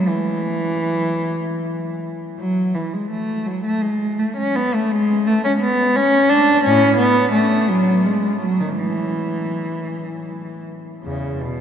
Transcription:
0.08 E3
2.39 F#3
2.75 E3
2.93 G#3
3.11 A3
3.47 F#3
3.65 A3
3.82 G#3
4.19 A3
4.37 C#4
4.56 B3
4.74 A3
4.92 G#3
5.27 A3
5.44 C#4
5.60 B3
5.96 C#4
6.29 D4
6.64 A2 C#4
6.97 B3
7.32 A3
7.68 F#3
8.05 G#3
8.41 F#3
8.60 D#3
8.78 E3
11.04 E2 C#3
11.41 B2

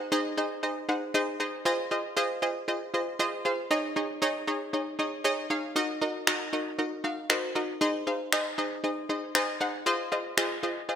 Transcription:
0.12 D#4 G#4 C5 D#5
0.37 D#4 G#4 C5 D#5
0.63 D#4 G#4 C5 D#5
0.89 D#4 G#4 C5 F#5
1.14 D#4 G#4 C5 D#5
1.40 D#4 G#4 C5 D#5
1.65 F4 G#4 C5 D#5
1.91 F4 G#4 C5 D#5
2.17 F4 G#4 C5 D#5
2.42 F4 G#4 C5 D#5
2.68 F4 G#4 C5 D#5
2.94 F4 G#4 C5 D#5
3.19 F4 G#4 C5 D#5
3.45 F4 G#4 C5 F5
3.71 D#4 G#4 C#5 D#5
3.96 D#4 G#4 C#5 D#5
4.22 D#4 G#4 C#5 D#5
4.47 D#4 G#4 C#5 D#5
4.73 D#4 G#4 C#5 D#5
4.99 D#4 G#4 C#5 D#5
5.24 D#4 G#4 C#5 D#5
5.50 D#4 G#4 C#5 F5
5.76 D#4 F#4 A#4 D#5
6.01 D#4 F#4 A#4 D#5
6.27 D#4 F#4 A#4 D#5, finger snap
6.53 D#4 F#4 A#4 D#5
6.78 D#4 F#4 A#4 D#5
7.04 D#4 F#4 A#4 F5
7.30 D#4 F#4 A#4 C5, finger snap
7.55 D#4 F#4 A#4 D#5
7.81 D#4 G#4 C5 D#5
8.07 D#4 G#4 C5 F5
8.32 D#4 G#4 C5 D#5, finger snap
8.58 D#4 G#4 C5 D#5
8.84 D#4 G#4 C5 D#5
9.09 D#4 G#4 C5 D#5
9.35 D#4 G#4 C5 D#5, finger snap
9.60 D#4 G#4 C5 F#5
9.86 F4 G#4 C5 D#5
10.12 F4 G#4 C5 D#5
10.37 F4 G#4 C5 D#5, finger snap
10.63 F4 G#4 C5 D#5
10.89 F4 G#4 C5 D#5

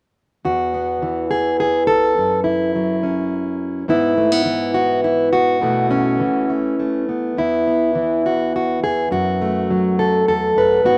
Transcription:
0.45 E2 F#4
0.74 B3
1.02 E3
1.31 G#4
1.60 G#4
1.87 A4
2.18 F#2
2.44 E4
2.75 F#3
3.03 C#4
3.88 G#2 E3 B3 E4
4.18 A3
4.32 B3
4.45 E3
4.74 F#4
5.04 E4
5.33 F#4
5.61 B2 E3 A3 B3
5.91 C#4
6.20 E3
6.50 A3
6.79 A3
7.09 B3
7.37 E2 E4
7.67 B3
7.95 E3
8.26 F#4
8.56 F#4
8.83 E2 G#4
9.11 F#2 F#4
9.42 A3
9.70 F#3
9.99 A4
10.28 E2 A4
10.56 F#2 B4
10.84 G#2 E3 B3 F#4

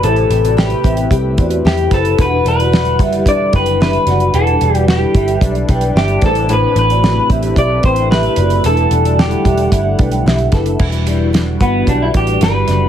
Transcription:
Already playing: C3 A3 C4 E4 G4 B4
0.03 A1 A2 E4 A4 B4 C5, closed hi-hat
0.16 closed hi-hat
0.30 A1 C4, closed hi-hat
0.44 F#4 D5, closed hi-hat
0.57 G4 B4, snare
0.70 closed hi-hat
0.83 A1 C4 G4 E5, kick, closed hi-hat
0.97 closed hi-hat
1.11 C2 G4, kick, closed hi-hat
1.37 E2 C4 F#4 D5, kick, closed hi-hat
1.51 closed hi-hat
1.65 E2 G4 E5, snare
1.77 closed hi-hat
1.91 F#1 E4 A4 B4 C5, kick, snare, closed hi-hat
2.05 closed hi-hat
2.18 E1 D3 E3 G3 D4 F#4 B4 F#5, kick, closed hi-hat
2.45 E1 G3 B4, closed hi-hat
2.59 F#4 D5, closed hi-hat
2.72 F#4, snare
2.85 closed hi-hat
2.99 F#1 G3 G4 E5, kick, closed hi-hat
3.13 closed hi-hat
3.26 E1 D4 D5, kick, closed hi-hat
3.53 F#1 G3 B4 G5, kick, closed hi-hat
3.66 closed hi-hat
3.80 D4 G4 B4 E5, snare
3.93 closed hi-hat
4.07 F#1 F#4 D5, snare, closed hi-hat
4.20 closed hi-hat
4.33 E1 E3 D4 F#4 A4 B4, closed hi-hat
4.47 closed hi-hat
4.61 E1 G3, closed hi-hat
4.74 F#4 D5, closed hi-hat
4.88 G4, snare
5.15 G1 G3 G4 E5, kick, closed hi-hat
5.28 closed hi-hat
5.41 B1 D4, kick, closed hi-hat
5.55 closed hi-hat
5.68 B1 G3 B4 G5, kick, closed hi-hat
5.81 closed hi-hat
5.95 G1 D4 G4 E5, snare
6.08 closed hi-hat
6.22 A1 A2 C3 A3 E4 B4 C5, kick, snare, closed hi-hat
6.26 A4
6.35 closed hi-hat
6.49 A2 E4 B4 C5, closed hi-hat
6.53 B4
6.76 A1 C4 B4, closed hi-hat
6.90 F#4 D5, closed hi-hat
7.03 B4, snare
7.30 A1 C4 G4 E5, kick, closed hi-hat
7.43 closed hi-hat
7.56 B1 G4 D5, kick, closed hi-hat
7.83 A1 C4 B4 C5 G5, kick, closed hi-hat
7.96 closed hi-hat
8.11 G4 B4 E5, snare
8.23 closed hi-hat
8.36 F#1 F#4 B4 D5, closed hi-hat
8.50 closed hi-hat
8.64 E1 D3 E3 G3 D4 A4 B4 F#5, closed hi-hat
8.77 closed hi-hat
8.91 E1 D4, closed hi-hat
9.05 F#4 D5, closed hi-hat
9.19 G4 A4, snare
9.31 closed hi-hat
9.45 E1 D4 G4 E5, kick, closed hi-hat
9.58 closed hi-hat
9.72 G1 E4, kick, closed hi-hat
9.98 B1 D4 B4 G5, kick, closed hi-hat
10.12 closed hi-hat
10.25 B1 E4 G4 E5, snare
10.38 closed hi-hat
10.52 F#1 D4 A4 B4, kick, snare, closed hi-hat
10.66 closed hi-hat
10.79 E1 D3 E3 G3 E4 F#4 B4, kick, crash
10.92 closed hi-hat
11.06 G3, closed hi-hat
11.33 D4, snare, closed hi-hat
11.60 G1 B3 F#4, kick, closed hi-hat
11.87 B1 G3 D4, kick, closed hi-hat
12.02 E4
12.14 A1 D4 G4, kick, closed hi-hat
12.27 closed hi-hat
12.41 G1 G3 B4, snare, closed hi-hat
12.68 F#1 D4, snare, closed hi-hat

